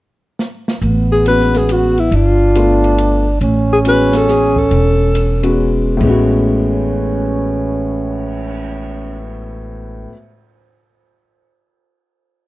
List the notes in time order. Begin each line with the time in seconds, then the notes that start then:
0.39 snare
0.68 snare
0.81 A1 B3, kick, ride
1.12 G#4
1.26 G#3 B3 C#4 F#4 B4, hi-hat pedal, ride
1.40 snare
1.54 G#4, snare, ride
1.69 F#4, hi-hat pedal, ride
1.98 E4, ride
2.11 G1 D4, kick, ride
2.16 F4
2.55 A3 B3 D4 F4, hi-hat pedal, ride
2.84 ride
2.98 ride
3.41 A1 C#4, kick, ride
3.73 G#4
3.85 G#3 B3 C#4 F#4 B4, hi-hat pedal, ride
4.13 snare, ride
4.17 A4
4.28 G#4, snare, hi-hat pedal
4.56 A4, kick
4.71 E1, kick, ride
5.15 hi-hat pedal, ride
5.43 G#3 B3 C#4 F#4, ride
5.97 A1 A2 G#3, kick, crash
6.01 B3 C#4
6.06 C#4 F#4
6.29 cymbal swell